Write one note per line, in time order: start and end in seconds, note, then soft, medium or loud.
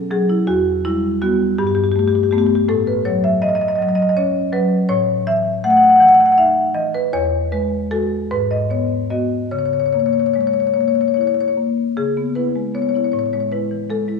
0.00 0.44 B2 medium
0.00 0.33 C#4 soft
0.11 0.47 F#3 medium
0.11 0.29 G#4 medium
0.30 0.48 E4 medium
0.47 1.55 E2 medium
0.47 0.83 F#4 medium
0.85 1.20 G3 medium
0.85 1.20 E4 medium
1.22 1.55 G3 soft
1.22 1.55 B3 soft
1.22 1.57 F#4 medium
1.58 2.66 G2 medium
1.58 1.67 G4 medium
1.67 1.75 G4 medium
1.75 1.84 G4 medium
1.84 1.91 G4 medium
1.91 1.99 G4 medium
1.96 2.31 A3 soft
1.96 2.07 G4 medium
2.07 2.15 G4 medium
2.15 2.23 G4 medium
2.23 2.31 G4 medium
2.31 2.65 A3 medium
2.31 2.65 B3 medium
2.31 2.38 G4 medium
2.38 2.46 G4 medium
2.46 2.55 G4 medium
2.55 2.65 G4 medium
2.68 4.85 A2 medium
2.68 2.87 A4 loud
2.87 3.05 B4 medium
3.05 3.65 F#3 medium
3.05 3.23 C#5 medium
3.24 3.42 E5 medium
3.42 4.02 E3 soft
3.42 3.49 D#5 medium
3.49 3.55 D#5 medium
3.55 3.61 D#5 medium
3.61 3.68 D#5 medium
3.68 3.75 D#5 medium
3.75 4.38 F#3 medium
3.75 3.82 D#5 medium
3.82 3.89 D#5 medium
3.89 3.95 D#5 medium
3.95 4.02 D#5 medium
4.02 4.09 D#5 medium
4.09 4.14 D#5 medium
4.17 4.75 C#4 medium
4.17 4.51 C#5 medium
4.53 4.89 F#3 medium
4.53 4.88 B4 medium
4.89 7.10 A2 medium
4.89 5.25 C#5 loud
5.27 5.86 E3 medium
5.27 5.62 E5 loud
5.64 6.23 A3 medium
5.64 5.70 F#5 medium
5.70 5.77 F#5 medium
5.77 5.83 F#5 medium
5.83 5.90 F#5 medium
5.90 5.96 F#5 medium
5.96 6.02 F#5 medium
6.00 6.60 E3 medium
6.00 6.08 F#5 medium
6.08 6.14 F#5 medium
6.14 6.20 F#5 medium
6.20 6.26 F#5 medium
6.26 6.32 F#5 medium
6.32 6.35 F#5 medium
6.38 6.98 D#4 soft
6.38 6.74 E5 medium
6.74 7.13 E3 medium
6.74 6.94 D#5 medium
6.95 7.14 B4 medium
7.13 8.27 E2 medium
7.13 7.51 C#5 loud
7.52 7.90 G#3 medium
7.52 7.90 B4 medium
7.91 8.27 G#3 soft
7.91 8.27 F#4 medium
7.91 8.29 A4 medium
8.31 9.48 G#2 medium
8.31 8.51 B4 medium
8.51 8.70 D#5 medium
8.70 9.09 B3 soft
8.70 9.09 C#5 medium
9.10 9.48 B3 soft
9.10 9.48 F#4 soft
9.10 9.50 D#5 medium
9.51 11.93 C#3 medium
9.51 9.58 C#5 medium
9.58 9.66 C#5 medium
9.66 9.73 C#5 medium
9.73 9.80 C#5 medium
9.80 9.86 C#5 medium
9.86 9.93 C#5 medium
9.93 10.60 A#3 soft
9.93 10.00 C#5 medium
10.00 10.06 C#5 medium
10.06 10.13 C#5 medium
10.13 10.20 C#5 medium
10.20 10.26 C#5 medium
10.26 10.34 C#5 medium
10.34 11.00 G#3 soft
10.34 10.41 C#5 medium
10.41 10.47 C#5 medium
10.47 10.53 C#5 medium
10.53 10.60 C#5 medium
10.60 10.67 C#5 medium
10.67 10.74 C#5 medium
10.74 11.41 A#3 soft
10.74 10.81 C#5 medium
10.81 10.88 C#5 medium
10.88 10.95 C#5 medium
10.95 11.01 C#5 medium
11.01 11.08 C#5 medium
11.08 11.14 C#5 medium
11.14 11.82 E4 soft
11.14 11.21 C#5 medium
11.21 11.27 C#5 medium
11.27 11.34 C#5 medium
11.34 11.41 C#5 medium
11.41 11.48 C#5 medium
11.48 11.53 C#5 medium
11.57 11.97 A#3 soft
11.97 13.10 C#3 medium
11.97 12.34 G#4 medium
12.17 12.34 B3 soft
12.35 12.53 B3 soft
12.35 12.54 E4 soft
12.35 12.73 B4 medium
12.56 12.87 G#3 soft
12.75 12.93 B3 soft
12.75 12.82 C#5 medium
12.82 12.89 C#5 soft
12.89 12.96 C#5 medium
12.94 13.12 B3 soft
12.94 13.12 E4 soft
12.94 13.04 C#5 medium
13.04 13.12 C#5 medium
13.12 14.20 A2 medium
13.12 13.19 C#5 medium
13.19 13.26 C#5 medium
13.26 13.33 C#5 medium
13.33 13.51 G#3 soft
13.33 13.40 C#5 medium
13.40 13.48 C#5 medium
13.52 13.69 G#3 soft
13.52 13.69 E4 soft
13.52 13.88 B4 medium
13.71 14.01 E3 soft
13.90 14.07 G#3 soft
13.90 14.20 A4 medium
14.08 14.20 G#3 soft
14.08 14.20 E4 soft